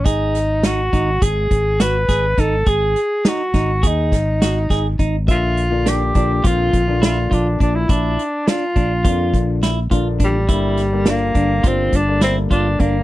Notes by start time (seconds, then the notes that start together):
0.05 G#1 D#4 G#4, kick, closed hi-hat
0.35 snare, closed hi-hat
0.63 D#4 F#4, snare, closed hi-hat
0.93 G#1 D#4, kick, closed hi-hat
1.22 G#1 G#4, kick, closed hi-hat
1.51 G#1, kick, closed hi-hat
1.80 F#4 B4, snare, closed hi-hat
2.09 G#1 G#4, kick, snare, closed hi-hat
2.38 G#1 D#4 A4, kick, closed hi-hat
2.66 G#1 G#4, kick, closed hi-hat
2.96 closed hi-hat
3.25 D#4 F#4, snare, closed hi-hat
3.54 G#1 D#4, kick, snare, closed hi-hat
3.83 D#2 G#4, kick, closed hi-hat
3.87 D#4
4.12 G#1, kick, snare, closed hi-hat
4.42 F#4, snare, closed hi-hat
4.70 G#1 G#4, kick, snare, closed hi-hat
4.99 G#1 D#4, kick, closed hi-hat
5.27 A#1 D3 F3 A#3 D4 E5, kick, closed hi-hat
5.31 F4
5.57 closed hi-hat
5.70 D3 F3 A#3 D4
5.85 D3 F3 A#3 D4 G4, snare, closed hi-hat
6.14 A#1 D3 F3 A#3 D4, kick, closed hi-hat
6.44 A#1 D3 F3 A#3 C4 F4, kick, closed hi-hat
6.73 A#1, kick, closed hi-hat
6.87 D3 F3 A#3 D4
7.02 D3 F3 A#3 D4 E4 F4, snare, closed hi-hat
7.31 A#1 D4 F4, kick, closed hi-hat
7.60 A#1 D4, kick, closed hi-hat
7.75 E4
7.89 A#1 D4 E4, kick, closed hi-hat
8.19 closed hi-hat
8.47 D4 F4, snare, closed hi-hat
8.76 A#1 D4, kick, closed hi-hat
9.04 F2 D3 F3 A#3 D4 F4, kick, closed hi-hat
9.34 A#1, kick, closed hi-hat
9.63 E4, snare, closed hi-hat
9.91 A#1 D3 F3 A#3 D4 F4, kick, closed hi-hat
10.20 A1 D4, kick, closed hi-hat
10.24 G3
10.49 G1 D3 G3 A#3 D4 E4, kick, closed hi-hat
10.77 snare, closed hi-hat
10.92 D3 G3 A#3 D4
11.05 D3 G3 A#3 D4 F4, snare, closed hi-hat
11.10 A#3
11.35 G1 D3 G3 A#3 D4, kick, closed hi-hat
11.63 G1 D3 G3 A#3 D4 F4, kick, closed hi-hat
11.68 C4
11.93 G1 D4, kick, closed hi-hat
12.07 D3 G3 A#3 D4
12.21 D3 G3 A#3 C4 D4 E4, snare, closed hi-hat
12.51 G1 D4 F4, kick, closed hi-hat
12.80 G1 A#3 D4, kick, closed hi-hat